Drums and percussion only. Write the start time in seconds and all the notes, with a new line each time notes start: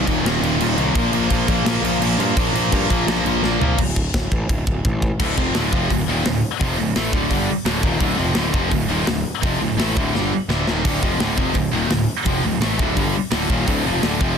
0.07 kick, crash
0.26 snare, crash
0.43 crash
0.61 crash
0.78 crash
0.95 kick, crash
1.13 crash
1.30 kick, crash
1.48 kick, crash
1.66 snare, crash
1.85 crash
2.02 crash
2.20 crash
2.37 kick, crash
2.55 crash
2.72 kick, crash
2.90 kick, crash
3.08 snare, crash
3.26 crash
3.44 snare
3.61 floor tom
3.78 kick, crash
3.96 kick
4.14 kick, snare, crash
4.32 kick
4.49 kick, crash
4.67 kick
4.85 kick, high tom
5.02 kick
5.20 kick, crash
5.38 kick
5.55 snare, open hi-hat
5.73 kick
5.90 kick, open hi-hat
6.26 snare, open hi-hat
6.61 kick, open hi-hat
6.96 snare, open hi-hat
7.13 kick
7.31 kick, open hi-hat
7.66 snare, open hi-hat
7.83 kick
8.00 kick, open hi-hat
8.35 snare, open hi-hat
8.54 kick
8.71 kick, open hi-hat
9.07 snare, open hi-hat
9.43 kick, open hi-hat
9.79 snare, open hi-hat
9.97 kick
10.15 snare
10.50 snare
10.67 snare
10.85 kick, open hi-hat, splash
11.03 kick
11.20 snare, open hi-hat
11.38 kick
11.54 kick, open hi-hat
11.90 snare, open hi-hat
12.25 kick, open hi-hat
12.62 snare, open hi-hat
12.79 kick
12.97 kick, open hi-hat
13.31 snare, open hi-hat
13.50 kick
13.68 kick, open hi-hat
14.03 snare, open hi-hat
14.21 kick